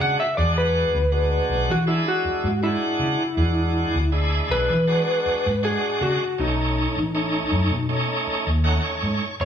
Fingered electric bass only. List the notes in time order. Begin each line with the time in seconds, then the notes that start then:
0.00 C#3
0.38 E2
0.95 D2
1.49 B1
1.70 E3
2.25 muted fingered electric bass stroke
2.44 G#2
2.99 C#3
3.37 E2
3.94 D2
4.49 B1
4.70 E3
5.26 muted fingered electric bass stroke
5.46 G#2
6.01 C#3
6.39 B1
6.97 A1
7.52 F#2
7.71 B2
8.27 muted fingered electric bass stroke
8.47 D#2
9.03 G#2
9.40 F#1